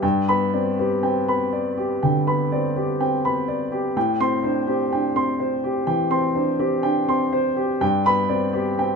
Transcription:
0.02 G2 G5
0.28 B3 B5
0.53 C4 D5
0.79 B3 G4
1.03 C4 G5
1.28 B3 B5
1.53 D5
1.77 G4
2.03 D3 G5
2.27 B3 B5
2.52 C4 D5
2.76 B3 G4
3.00 C4 G5
3.25 B3 B5
3.48 D5
3.72 G4
3.96 A2 G5
4.20 C4 C6
4.44 D4 C5
4.67 C4 G4
4.92 D4 G5
5.16 C4 C6
5.40 C5
5.64 G4
5.87 E3 G5
6.11 C4 C6
6.35 D4 C5
6.59 C4 G4
6.83 D4 G5
7.08 C4 C6
7.32 C5
7.57 G4
7.81 G2 G5
8.06 B3 B5
8.29 C4 D5
8.53 B3 G4
8.79 C4 G5

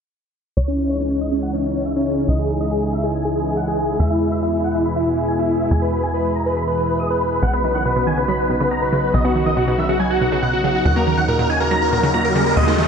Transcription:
0.57 C#2 C#3 E3 G#3 D#4 E4 C#5
0.68 C#4
0.78 C#4
0.89 C#5
1.00 C#4
1.10 C#4
1.21 D#5
1.32 C#4
1.43 F#5
1.53 C#4
1.64 C#4
1.75 C#4
1.86 E5
1.96 C#4
2.07 C#4
2.18 C#4
2.28 C#2 D#5
2.39 G#4
2.50 G#4
2.61 D#5
2.71 G#4
2.82 G#4
2.93 E5
3.03 G#4
3.14 G#5
3.25 G#4
3.36 G#4
3.46 G#4
3.57 F#5
3.68 G#4
3.78 G#4
3.89 G#4
4.00 E2 B2 G#4 E5
4.11 E4
4.21 E4
4.32 E5
4.43 E4
4.53 E4
4.64 F#5
4.75 E4
4.85 B5
4.96 E4
5.07 E4
5.18 E4
5.28 G#5
5.39 E4
5.50 E4
5.61 E4
5.71 E2 G#5
5.82 B4
5.93 B4
6.03 G#5
6.14 B4
6.25 B4
6.35 A#5
6.46 B4
6.57 B5
6.68 B4
6.78 B4
6.89 B4
7.00 D#6
7.10 B4
7.21 B4
7.32 B4
7.43 B1 B2 C#3 F#3 B3 D#4 F#4 F#5
7.53 B3 B4
7.64 D#3 B4
7.75 D#3 F#5
7.85 B2 B4
7.96 B2 B4
8.07 D#3 G#5
8.18 C#3 B4
8.28 F#3 B5
8.39 B4
8.50 B2 B4
8.60 C#3 B4
8.71 B2 A#5
8.82 B4
8.93 C#3 B4
9.03 B4
9.14 B1 B2 D#5
9.25 B3 F#4
9.35 D#3 F#4
9.46 D#3 D#5
9.57 B2 F#4
9.68 B2 F#4
9.78 D#3 E5
9.89 C#3 F#4
10.00 F#3 G#5
10.10 F#4
10.21 B2 F#4
10.32 C#3 F#4
10.43 B2 F#5
10.53 F#4
10.64 C#3 F#4
10.75 F#4
10.85 D#2 A#2 A#3 F#5, riser
10.96 A#3 A#4
11.07 D#3 A#4
11.17 D#3 F#5
11.28 A#2 A#4
11.39 A#2 A#4
11.50 D#3 G#5
11.60 C#3 A#4
11.71 F#3 A#5
11.82 A#4
11.93 A#2 A#4
12.03 C#3 A#4
12.14 A#2 A#5
12.25 A#4
12.35 C#3 A#4
12.46 A#4
12.57 D#2 A#2 D#5
12.68 A#3 D#4
12.78 D#3 D#4

